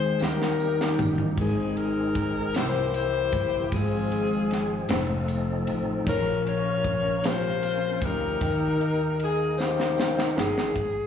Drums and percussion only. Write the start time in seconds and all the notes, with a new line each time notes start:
0.20 snare, tambourine
0.42 snare
0.60 tambourine
0.81 snare
0.98 floor tom, tambourine
1.18 floor tom
1.37 kick, ride, tambourine
1.77 ride
2.15 kick, ride
2.54 snare, ride, tambourine
2.94 ride, tambourine
3.32 kick, ride, tambourine
3.72 kick, ride, tambourine
4.12 ride
4.51 snare, ride
4.89 snare, ride, tambourine
5.28 ride, tambourine
5.67 ride, tambourine
6.07 kick, ride, tambourine
6.47 ride
6.85 kick, ride
7.24 snare, ride, tambourine
7.63 ride, tambourine
8.01 kick, ride, tambourine
8.41 kick, ride, tambourine
8.81 ride
9.20 ride
9.58 snare, tambourine
9.80 snare
9.98 snare, tambourine
10.19 snare
10.36 snare, tambourine
10.58 snare
10.76 kick, closed hi-hat